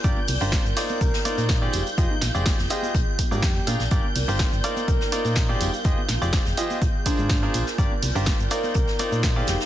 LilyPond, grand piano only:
\new Staff \with { instrumentName = "Grand piano" } { \time 4/4 \key c \minor \tempo 4 = 124 <d' f' g' bes' d''>16 r8 <d' f' g' bes' c''>8 r16 <ees' f' bes' c'' d''>8 r8 <ees' f' bes' c'' d''>8. <f' g' aes' c'' d''>8 r16 | <f' g' aes' c'' ees''>16 r8 <f' g' aes' c'' d''>8 r16 <f' g' aes' c'' ees''>8 r8. <d' f' aes' bes' d''>16 r8 <d' f' aes' bes' f''>16 r16 | <d' f' g' bes' d''>16 r8 <d' f' g' bes' c''>8 r16 <ees' f' bes' c'' d''>8 r8 <ees' f' bes' c'' d''>8. <f' g' aes' c'' d''>8 r16 | <f' g' aes' c'' ees''>16 r8 <f' g' aes' c'' d''>8 r16 <f' g' aes' c'' ees''>8 r8 <d' f' aes' bes' c''>8. <d' f' aes' bes' c''>8 r16 |
<d' f' g' bes' d''>16 r8 <d' f' g' bes' c''>8 r16 <ees' f' bes' c'' d''>8 r8 <ees' f' bes' c'' d''>8. <f' g' aes' c'' d''>8 r16 | }